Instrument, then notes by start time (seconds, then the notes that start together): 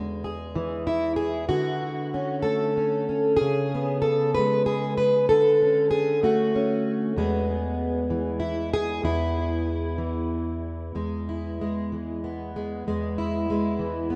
steel-string acoustic guitar
Already playing: E2 G#3
0.24 G#4
0.56 E3
0.87 E4
1.16 G#4
1.49 D3 F#4
2.14 C#4
2.42 A3 A4
2.77 C#4
3.09 C#4
3.37 G#4
3.41 C#3
3.75 B3
4.02 A4
4.35 G#3 B4
4.66 G#4
4.97 B4
5.29 D3 A4
5.62 C#4
5.91 G#4
6.23 A3 F#4
6.55 C#4
7.17 E2 G#3 B3 G#4
8.10 E3
8.40 E4
8.74 G#4
9.03 E2 E4
9.98 E3
10.95 E2 G#3
11.29 E4
11.61 G#3
11.92 E3
12.24 B3
12.56 G#3
12.87 E2 G#3
13.18 E4
13.50 G#3
13.79 E3
14.10 B3